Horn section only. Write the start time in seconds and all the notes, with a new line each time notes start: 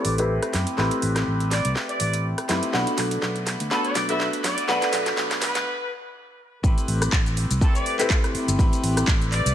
Already playing: D5
1.51 D5
1.89 D5
3.71 A4
3.85 D5
4.08 E5
4.44 D5
5.42 B4
7.62 A4
7.75 D5
9.32 D5